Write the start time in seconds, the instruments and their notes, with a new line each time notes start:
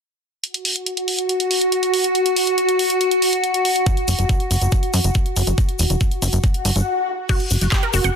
0.44 ambient pad F#4, closed hi-hat
0.54 closed hi-hat
0.65 open hi-hat
0.76 closed hi-hat
0.86 closed hi-hat
0.97 closed hi-hat
1.08 open hi-hat
1.19 closed hi-hat
1.29 closed hi-hat
1.40 closed hi-hat
1.51 open hi-hat
1.61 closed hi-hat
1.72 closed hi-hat
1.83 closed hi-hat
1.94 open hi-hat
2.04 closed hi-hat
2.15 closed hi-hat
2.26 closed hi-hat
2.36 open hi-hat
2.47 closed hi-hat
2.58 closed hi-hat
2.69 closed hi-hat
2.79 open hi-hat
2.90 closed hi-hat
3.01 closed hi-hat
3.11 closed hi-hat
3.22 open hi-hat
3.33 closed hi-hat
3.44 closed hi-hat
3.54 closed hi-hat
3.65 open hi-hat
3.76 closed hi-hat
3.86 kick, closed hi-hat, shaker
3.97 closed hi-hat
4.08 analog synth bass F#1, open hi-hat, shaker
4.19 analog synth bass F#1, closed hi-hat, shaker
4.29 kick, closed hi-hat, shaker
4.40 closed hi-hat
4.51 analog synth bass F#1, open hi-hat, shaker
4.61 analog synth bass F#1, closed hi-hat, shaker
4.71 kick, closed hi-hat, shaker
4.83 closed hi-hat
4.94 analog synth bass F#2, open hi-hat, shaker
5.04 analog synth bass F#1, closed hi-hat, shaker
5.14 kick, closed hi-hat, shaker
5.26 closed hi-hat
5.36 analog synth bass F#1, open hi-hat, shaker
5.47 analog synth bass F#1, closed hi-hat, shaker
5.58 kick, closed hi-hat, shaker
5.69 closed hi-hat
5.79 analog synth bass E1, open hi-hat, shaker
5.90 analog synth bass E1, closed hi-hat, shaker
6.01 kick, closed hi-hat, shaker
6.11 closed hi-hat
6.22 analog synth bass F#1, open hi-hat, shaker
6.32 analog synth bass F#1, closed hi-hat, shaker
6.44 kick, closed hi-hat, swell, shaker
6.54 closed hi-hat
6.65 analog synth bass G1, open hi-hat, shaker
6.76 analog synth bass G1, closed hi-hat, shaker
7.29 synth arpeggio sound F#4, kick, closed hi-hat, crash, shaker
7.40 closed hi-hat
7.50 analog synth bass F#1, open hi-hat, shaker
7.61 analog synth bass F#1, closed hi-hat, shaker
7.72 synth arpeggio sound G4, kick, clap, closed hi-hat, shaker
7.83 synth arpeggio sound A#4, closed hi-hat
7.93 analog synth bass F#1, synth arpeggio sound F#4, open hi-hat, shaker
8.04 analog synth bass F#1, synth arpeggio sound F#5, closed hi-hat, shaker